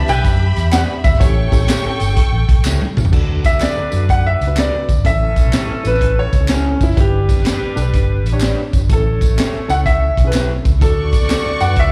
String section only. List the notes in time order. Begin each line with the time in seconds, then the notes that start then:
Already playing: G4 E5 B5
1.20 A4 G5 C#6
10.79 D5 C#6